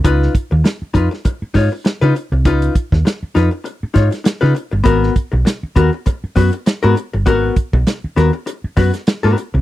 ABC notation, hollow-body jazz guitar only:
X:1
M:4/4
L:1/16
Q:"Swing 16ths" 1/4=100
K:G#dor
V:1 name="Hollow-body jazz guitar"
[DEB]2 z4 [DEB] z3 [DEc] z2 [DEB] z2 | [DEB]2 z4 [DEB] z3 [DEc] z2 [DEB] z2 | [B,FA]2 z4 [B,FA] z3 [B,FB] z2 [B,FA] z2 | [B,FA]2 z4 [B,FA] z3 [B,FB] z2 [B,FA] z2 |]